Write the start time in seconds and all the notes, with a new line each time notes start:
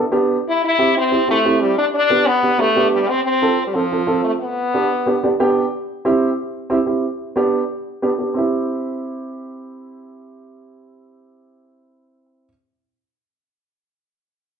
0.12 B3 D4 G4
0.49 E4
0.65 E4
0.79 C4 E4 G4
0.98 C4
1.11 C4 E4 G4
1.28 A3 C4 E4 G4
1.45 C4 E4 G4
1.62 G3
1.78 D4
1.95 D4
2.10 B3 D4 G4
2.27 B3
2.43 B3 D4 G4
2.58 A3 B3 D4 G4
2.76 B3 D4 G4
2.92 G3
3.09 C4
3.24 C4
3.42 C4 F4 A4
3.67 G3
3.74 F3 C4 F4 A4
3.92 C4 F4 A4
4.07 C4 F4 A4
4.24 A3
4.41 B3
4.74 B3 D4 G4
5.06 B3 D4 G4
5.23 B3 D4 G4 D5
5.40 B3 D4 G4 G5
6.05 C4 E4 G4
6.70 C4 E4 G4
6.86 C4 E4 G4
7.36 B3 D4 G4
8.02 B3 D4 G4
8.18 B3 D4 G4
8.34 C4 E4 G4